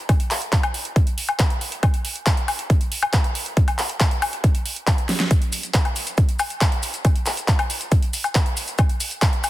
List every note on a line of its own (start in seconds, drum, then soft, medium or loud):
0.09 kick loud
0.09 closed hi-hat medium
0.09 high woodblock soft
0.20 closed hi-hat medium
0.31 clap medium
0.31 open hi-hat loud
0.42 closed hi-hat medium
0.53 kick loud
0.53 clap loud
0.53 closed hi-hat medium
0.63 closed hi-hat medium
0.63 high woodblock medium
0.74 open hi-hat medium
0.85 closed hi-hat medium
0.96 kick loud
0.96 closed hi-hat medium
1.07 closed hi-hat medium
1.18 open hi-hat loud
1.29 closed hi-hat medium
1.29 high woodblock soft
1.39 kick loud
1.39 clap loud
1.39 closed hi-hat medium
1.50 closed hi-hat medium
1.61 open hi-hat medium
1.72 closed hi-hat medium
1.83 kick loud
1.83 closed hi-hat medium
1.83 high woodblock medium
1.94 closed hi-hat medium
2.05 open hi-hat loud
2.16 closed hi-hat medium
2.26 kick loud
2.26 clap loud
2.26 closed hi-hat loud
2.37 closed hi-hat medium
2.48 open hi-hat medium
2.48 high woodblock soft
2.59 closed hi-hat medium
2.70 kick loud
2.70 closed hi-hat loud
2.81 closed hi-hat medium
2.92 open hi-hat loud
3.03 closed hi-hat medium
3.03 high woodblock medium
3.13 kick loud
3.13 clap loud
3.13 closed hi-hat loud
3.24 closed hi-hat medium
3.35 open hi-hat medium
3.46 closed hi-hat medium
3.57 kick loud
3.57 closed hi-hat medium
3.68 closed hi-hat medium
3.68 high woodblock soft
3.79 clap medium
3.79 open hi-hat loud
3.89 closed hi-hat medium
4.00 kick loud
4.00 clap loud
4.00 closed hi-hat loud
4.11 closed hi-hat medium
4.22 open hi-hat medium
4.22 high woodblock medium
4.33 closed hi-hat medium
4.44 kick loud
4.44 closed hi-hat loud
4.55 closed hi-hat medium
4.66 open hi-hat loud
4.76 closed hi-hat medium
4.87 kick loud
4.87 clap loud
4.87 closed hi-hat loud
4.87 high woodblock soft
4.98 closed hi-hat medium
5.09 snare medium
5.09 open hi-hat medium
5.20 snare medium
5.20 closed hi-hat medium
5.31 kick loud
5.31 closed hi-hat loud
5.31 maracas soft
5.42 closed hi-hat medium
5.53 open hi-hat loud
5.53 maracas loud
5.63 closed hi-hat medium
5.63 maracas soft
5.74 kick loud
5.74 clap loud
5.74 closed hi-hat loud
5.74 maracas soft
5.85 closed hi-hat medium
5.85 high woodblock soft
5.96 open hi-hat loud
5.96 maracas medium
6.07 closed hi-hat medium
6.07 maracas medium
6.17 kick loud
6.17 closed hi-hat loud
6.17 maracas soft
6.29 closed hi-hat medium
6.39 open hi-hat loud
6.39 high woodblock medium
6.39 maracas medium
6.50 closed hi-hat medium
6.50 maracas medium
6.61 kick loud
6.61 clap loud
6.61 closed hi-hat loud
6.61 maracas soft
6.72 closed hi-hat medium
6.83 open hi-hat loud
6.83 maracas loud
6.94 closed hi-hat medium
6.94 maracas medium
7.05 kick loud
7.05 closed hi-hat medium
7.05 high woodblock soft
7.05 maracas soft
7.16 closed hi-hat medium
7.26 clap medium
7.26 open hi-hat loud
7.26 maracas medium
7.37 closed hi-hat medium
7.37 maracas medium
7.48 kick loud
7.48 clap loud
7.48 closed hi-hat medium
7.48 maracas soft
7.59 closed hi-hat medium
7.59 high woodblock medium
7.70 open hi-hat loud
7.70 maracas medium
7.81 closed hi-hat medium
7.81 maracas medium
7.92 kick loud
7.92 closed hi-hat loud
7.92 maracas soft
8.03 closed hi-hat medium
8.13 open hi-hat loud
8.13 maracas loud
8.24 closed hi-hat medium
8.24 high woodblock soft
8.24 maracas medium
8.35 kick loud
8.35 clap loud
8.35 closed hi-hat loud
8.35 maracas soft
8.46 closed hi-hat medium
8.57 open hi-hat loud
8.57 maracas loud
8.67 closed hi-hat medium
8.67 maracas medium
8.78 kick loud
8.78 closed hi-hat medium
8.78 high woodblock medium
8.78 maracas soft
8.89 closed hi-hat medium
9.00 open hi-hat loud
9.00 maracas loud
9.11 closed hi-hat medium
9.11 maracas medium
9.22 kick loud
9.22 clap loud
9.22 closed hi-hat medium
9.22 maracas soft
9.33 closed hi-hat soft
9.44 open hi-hat loud
9.44 high woodblock soft
9.44 maracas loud